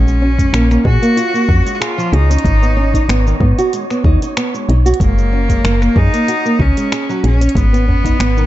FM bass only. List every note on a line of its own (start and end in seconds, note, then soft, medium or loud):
0.00 0.47 A#1 medium
0.53 0.78 A#1 medium
0.85 0.98 A#2 medium
1.49 1.62 F2 medium
2.13 2.37 C#2 medium
2.44 3.03 G#1 loud
3.09 3.33 G#1 medium
3.40 3.54 G#2 medium
4.04 4.17 D#2 medium
4.69 4.93 B1 loud
5.00 5.58 F#1 loud
5.64 5.89 F#1 medium
5.96 6.09 F#2 medium
6.59 6.73 C#2 medium
7.24 7.48 A#1 medium
7.55 8.13 G#1 loud
8.20 8.44 G#1 medium